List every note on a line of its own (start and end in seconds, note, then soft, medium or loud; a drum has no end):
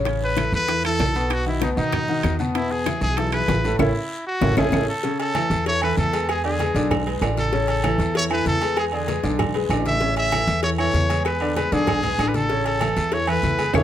0.00 0.47 A1 medium
0.05 0.31 C#3 medium
0.05 0.32 C#4 medium
0.05 0.32 C#5 medium
0.05 high bongo medium
0.05 high timbale medium
0.05 long guiro medium
0.21 0.52 B4 loud
0.21 high bongo soft
0.21 high conga soft
0.37 0.62 E3 medium
0.37 0.63 E4 medium
0.37 0.63 A4 medium
0.37 high bongo medium
0.37 high conga loud
0.37 high timbale medium
0.37 short guiro medium
0.37 claves medium
0.52 0.96 E2 loud
0.52 0.83 B4 loud
0.52 short guiro medium
0.68 0.81 E3 medium
0.68 0.81 E4 medium
0.68 0.81 A4 medium
0.68 high bongo medium
0.68 high conga soft
0.68 high timbale medium
0.68 long guiro medium
0.84 1.10 E3 medium
0.84 1.10 E4 medium
0.84 1.10 A4 medium
0.84 1.34 A4 loud
0.84 high bongo soft
0.84 high conga soft
0.84 high timbale medium
0.84 claves medium
0.99 1.72 B1 medium
0.99 high bongo soft
0.99 low bongo medium
0.99 high conga medium
0.99 high timbale medium
0.99 low timbale medium
0.99 short guiro medium
1.15 1.41 B2 medium
1.15 1.41 B3 medium
1.15 1.41 B4 medium
1.15 high bongo soft
1.15 short guiro medium
1.30 1.47 F#4 loud
1.30 high bongo medium
1.30 high timbale loud
1.30 long guiro medium
1.30 claves medium
1.46 1.59 D#3 medium
1.46 1.59 D#4 medium
1.46 1.61 E4 medium
1.46 1.59 F#4 medium
1.46 high bongo soft
1.46 high conga soft
1.61 1.74 B2 medium
1.61 1.75 B3 medium
1.61 1.70 D#4 medium
1.61 1.75 B4 medium
1.61 high bongo medium
1.61 high conga loud
1.61 high timbale medium
1.61 short guiro medium
1.77 2.21 B2 loud
1.77 2.03 D#3 medium
1.77 2.03 D#4 medium
1.77 2.36 D#4 loud
1.77 2.03 F#4 medium
1.77 short guiro medium
1.92 high bongo medium
1.92 high conga soft
1.92 low conga medium
1.92 high timbale medium
1.92 long guiro medium
1.92 claves medium
2.08 2.34 D#3 medium
2.08 2.34 D#4 medium
2.08 2.34 F#4 medium
2.08 high bongo soft
2.08 high conga soft
2.23 2.96 E2 medium
2.23 high bongo soft
2.23 low bongo medium
2.23 high timbale medium
2.23 short guiro medium
2.23 claves medium
2.39 2.52 B2 medium
2.39 2.52 B3 medium
2.39 2.53 B4 medium
2.39 high bongo soft
2.39 high conga medium
2.39 short guiro medium
2.55 2.81 B2 medium
2.55 2.81 B3 medium
2.55 2.73 E4 medium
2.55 2.81 B4 medium
2.55 high bongo medium
2.55 high conga soft
2.55 high timbale medium
2.55 long guiro medium
2.71 3.02 G#4 medium
2.71 high bongo soft
2.71 high conga soft
2.86 3.12 E3 medium
2.86 3.12 E4 medium
2.86 3.12 G#4 medium
2.86 high bongo medium
2.86 high conga loud
2.86 high timbale medium
2.86 short guiro medium
2.86 claves medium
3.01 3.45 B1 loud
3.01 3.19 G#4 loud
3.01 short guiro medium
3.17 3.30 E3 medium
3.17 3.31 E4 medium
3.17 3.31 G#4 medium
3.17 3.32 A4 loud
3.17 high bongo medium
3.17 high conga soft
3.17 high timbale medium
3.17 long guiro medium
3.32 3.59 E3 medium
3.32 3.59 E4 medium
3.32 3.59 G#4 medium
3.32 3.76 B4 loud
3.32 high bongo soft
3.32 high timbale medium
3.32 claves medium
3.48 3.77 A1 loud
3.48 high bongo soft
3.48 low bongo medium
3.48 high conga medium
3.48 high timbale medium
3.48 low timbale medium
3.48 short guiro medium
3.64 3.77 A2 medium
3.64 3.77 A3 medium
3.64 3.77 A4 medium
3.64 high bongo soft
3.64 short guiro medium
3.79 3.91 A1 loud
3.79 3.90 A3 medium
3.79 3.89 C#4 loud
3.79 4.23 E4 medium
3.79 3.89 E4 loud
3.79 low bongo medium
3.79 high conga loud
3.79 high timbale loud
3.79 long guiro medium
3.79 claves loud
4.26 4.55 F#4 loud
4.41 4.53 A1 loud
4.41 4.52 A3 medium
4.41 4.52 C#4 medium
4.41 4.52 E4 medium
4.41 low bongo loud
4.41 high conga loud
4.41 high timbale loud
4.41 long guiro medium
4.41 claves medium
4.57 4.69 A1 loud
4.57 4.68 A3 loud
4.57 4.68 C#4 loud
4.57 4.68 E4 loud
4.57 4.87 G#4 medium
4.57 low bongo loud
4.57 high conga loud
4.57 high timbale loud
4.57 long guiro loud
4.57 claves loud
4.72 4.84 A1 loud
4.72 4.84 A3 loud
4.72 4.84 C#4 medium
4.72 4.84 E4 medium
4.72 low bongo medium
4.72 high conga loud
4.72 high timbale loud
4.72 long guiro loud
4.72 claves loud
4.89 5.18 A4 medium
5.04 5.30 C#3 medium
5.04 5.30 C#4 medium
5.04 5.30 C#5 medium
5.04 cowbell medium
5.04 high conga soft
5.04 long guiro medium
5.20 5.63 A4 loud
5.20 cowbell medium
5.20 high conga soft
5.20 low agogo medium
5.35 5.61 E3 medium
5.35 5.61 E4 medium
5.35 5.61 A4 medium
5.35 cowbell medium
5.35 high conga loud
5.35 low agogo loud
5.35 short guiro medium
5.35 claves medium
5.50 5.94 E2 loud
5.50 cowbell medium
5.50 short guiro medium
5.66 5.80 E3 medium
5.66 5.80 E4 medium
5.66 5.80 A4 medium
5.66 5.81 C#5 loud
5.66 cowbell loud
5.66 high conga soft
5.66 low agogo medium
5.66 long guiro medium
5.82 6.08 E3 medium
5.82 6.08 E4 medium
5.82 6.08 A4 loud
5.82 5.97 B4 loud
5.82 high conga soft
5.82 low agogo loud
5.82 claves medium
5.97 6.69 E2 loud
5.97 6.27 A4 loud
5.97 cowbell medium
5.97 high conga medium
5.97 short guiro medium
6.13 6.38 G#3 medium
6.13 6.39 G#4 medium
6.13 6.39 B4 medium
6.13 cowbell medium
6.13 low agogo medium
6.13 short guiro medium
6.28 6.44 G#4 medium
6.28 cowbell loud
6.28 high conga soft
6.28 low agogo loud
6.28 long guiro medium
6.28 claves medium
6.44 6.57 D3 medium
6.44 6.57 D4 medium
6.44 6.88 G#4 medium
6.44 6.57 D5 medium
6.44 high conga soft
6.44 low agogo medium
6.59 6.72 G#3 medium
6.59 6.72 G#4 medium
6.59 6.73 B4 medium
6.59 cowbell medium
6.59 high conga loud
6.59 low agogo medium
6.59 short guiro medium
6.75 7.18 B1 loud
6.75 7.01 D3 loud
6.75 7.01 D4 medium
6.75 7.01 D5 loud
6.75 cowbell medium
6.75 short guiro medium
6.91 cowbell loud
6.91 high conga soft
6.91 low conga loud
6.91 low agogo loud
6.91 long guiro medium
6.91 claves medium
7.06 7.19 G#3 medium
7.06 7.19 G#4 medium
7.06 7.19 B4 medium
7.06 high conga soft
7.06 low agogo medium
7.21 7.94 A1 loud
7.21 7.47 D3 medium
7.21 7.47 D4 medium
7.21 7.47 D5 medium
7.21 cowbell medium
7.21 high conga soft
7.21 low timbale medium
7.21 low agogo loud
7.21 short guiro medium
7.21 claves medium
7.37 7.67 A4 medium
7.37 cowbell medium
7.37 high conga medium
7.37 short guiro medium
7.52 7.78 C#3 medium
7.52 7.78 C#4 medium
7.52 7.78 C#5 medium
7.52 cowbell loud
7.52 long guiro medium
7.68 8.12 A4 medium
7.68 cowbell medium
7.68 high conga soft
7.68 low agogo medium
7.84 8.09 E3 medium
7.84 8.10 E4 medium
7.84 8.10 A4 medium
7.84 cowbell medium
7.84 high conga loud
7.84 low agogo loud
7.84 short guiro medium
7.84 claves medium
7.98 8.42 E2 loud
7.98 cowbell medium
7.98 short guiro medium
8.15 8.28 E3 medium
8.15 8.28 E4 medium
8.15 8.28 A4 medium
8.15 8.23 C#5 loud
8.15 cowbell loud
8.15 high conga soft
8.15 low agogo medium
8.15 long guiro medium
8.31 8.56 E3 medium
8.31 8.56 E4 medium
8.31 8.56 A4 medium
8.31 8.46 B4 loud
8.31 low agogo loud
8.31 claves medium
8.46 9.18 E2 medium
8.46 8.76 A4 loud
8.46 cowbell medium
8.46 high conga medium
8.46 short guiro medium
8.61 8.87 G#3 medium
8.61 8.87 G#4 medium
8.61 8.87 B4 medium
8.61 cowbell medium
8.61 low agogo medium
8.61 short guiro medium
8.77 8.85 G#4 medium
8.77 cowbell loud
8.77 high conga soft
8.77 low agogo loud
8.77 long guiro medium
8.77 claves medium
8.92 9.05 D3 medium
8.92 9.06 D4 medium
8.92 9.36 G#4 medium
8.92 9.06 D5 medium
8.92 high conga soft
8.92 low agogo medium
9.08 9.21 G#3 medium
9.08 9.21 G#4 medium
9.08 9.21 B4 medium
9.08 cowbell medium
9.08 high conga medium
9.08 low agogo medium
9.08 short guiro medium
9.23 9.67 B1 loud
9.23 9.49 D3 loud
9.23 9.49 D4 medium
9.23 9.49 D5 medium
9.23 cowbell medium
9.23 short guiro medium
9.39 cowbell loud
9.39 high conga soft
9.39 low conga medium
9.39 low agogo loud
9.39 long guiro medium
9.39 claves medium
9.54 9.67 G#3 medium
9.54 9.67 G#4 medium
9.54 9.67 B4 medium
9.54 high conga soft
9.54 low agogo medium
9.69 10.42 A1 loud
9.69 9.96 D3 medium
9.69 9.96 D4 medium
9.69 9.96 D5 medium
9.69 cowbell medium
9.69 low agogo loud
9.69 short guiro medium
9.69 claves medium
9.85 10.15 E5 loud
9.85 cowbell medium
9.85 high conga medium
9.85 short guiro medium
10.01 10.27 C#3 medium
10.01 10.27 C#4 medium
10.01 10.27 C#5 medium
10.01 cowbell loud
10.01 high conga soft
10.01 long guiro medium
10.17 10.61 E5 loud
10.17 cowbell medium
10.17 high conga soft
10.17 low agogo medium
10.32 10.58 E3 medium
10.32 10.58 E4 medium
10.32 10.58 A4 medium
10.32 cowbell medium
10.32 high conga loud
10.32 low agogo loud
10.32 short guiro medium
10.32 claves medium
10.47 10.91 E2 loud
10.47 cowbell medium
10.47 short guiro medium
10.63 10.76 E3 medium
10.63 10.76 E4 medium
10.63 10.76 A4 medium
10.63 10.70 C#5 loud
10.63 cowbell loud
10.63 high conga soft
10.63 low agogo medium
10.63 long guiro medium
10.78 11.05 E3 medium
10.78 11.04 E4 medium
10.78 11.05 A4 medium
10.78 11.23 C#5 loud
10.78 high conga soft
10.78 low agogo loud
10.78 claves medium
10.94 11.66 E2 medium
10.94 cowbell medium
10.94 high conga medium
10.94 short guiro medium
11.10 11.36 G#3 medium
11.10 11.36 G#4 medium
11.10 11.36 B4 medium
11.10 cowbell medium
11.10 high conga medium
11.10 low agogo medium
11.10 short guiro medium
11.25 11.55 B4 medium
11.25 cowbell loud
11.25 high conga soft
11.25 low agogo loud
11.25 long guiro medium
11.25 claves medium
11.41 11.54 D3 medium
11.41 11.54 D4 medium
11.41 11.54 D5 loud
11.41 high conga soft
11.41 low agogo medium
11.56 11.70 G#3 medium
11.56 11.70 G#4 medium
11.56 11.74 B4 loud
11.56 11.70 B4 medium
11.56 cowbell medium
11.56 high conga loud
11.56 low agogo medium
11.56 short guiro medium
11.72 12.16 B1 loud
11.72 11.98 D3 loud
11.72 11.98 D4 medium
11.72 12.29 G#4 loud
11.72 11.98 D5 loud
11.72 cowbell medium
11.72 short guiro medium
11.87 cowbell loud
11.87 high conga soft
11.87 low conga medium
11.87 low agogo loud
11.87 long guiro medium
11.87 claves medium
12.03 12.16 G#3 medium
12.03 12.16 G#4 medium
12.03 12.17 B4 medium
12.03 high conga soft
12.03 low conga medium
12.03 low agogo medium
12.18 12.91 A1 loud
12.18 12.45 D3 medium
12.18 12.45 D4 medium
12.18 12.45 D5 medium
12.18 cowbell medium
12.18 high conga soft
12.18 low agogo loud
12.18 short guiro medium
12.18 claves medium
12.28 12.37 B4 medium
12.34 12.66 A4 loud
12.34 cowbell medium
12.34 high conga medium
12.34 short guiro medium
12.50 12.76 C#3 medium
12.50 12.76 C#4 medium
12.50 12.76 C#5 medium
12.50 cowbell loud
12.50 long guiro medium
12.65 13.15 A4 loud
12.65 cowbell medium
12.65 high conga soft
12.65 low agogo medium
12.81 13.07 E3 medium
12.81 13.07 E4 medium
12.81 13.07 A4 medium
12.81 cowbell medium
12.81 high conga loud
12.81 low agogo loud
12.81 short guiro medium
12.81 claves medium
12.97 13.40 E2 loud
12.97 cowbell medium
12.97 short guiro medium
13.12 13.25 E3 medium
13.12 13.25 E4 medium
13.12 13.25 A4 medium
13.12 13.30 C#5 loud
13.12 cowbell loud
13.12 high conga soft
13.12 low agogo medium
13.12 long guiro medium
13.27 13.53 E3 medium
13.27 13.54 E4 medium
13.27 13.54 A4 medium
13.27 13.76 B4 loud
13.27 high conga soft
13.27 low agogo loud
13.27 claves medium
13.43 13.72 E2 loud
13.43 cowbell medium
13.43 high conga medium
13.43 short guiro medium
13.58 13.72 G#3 medium
13.58 13.72 G#4 medium
13.58 13.72 B4 medium
13.58 cowbell medium
13.58 high conga medium
13.58 low agogo medium
13.58 short guiro medium
13.74 13.83 E2 loud
13.74 13.83 D4 loud
13.74 13.83 E4 loud
13.74 13.83 G#4 loud
13.74 13.83 C#5 loud
13.74 cowbell loud
13.74 high conga loud
13.74 high timbale loud
13.74 long guiro loud
13.74 claves loud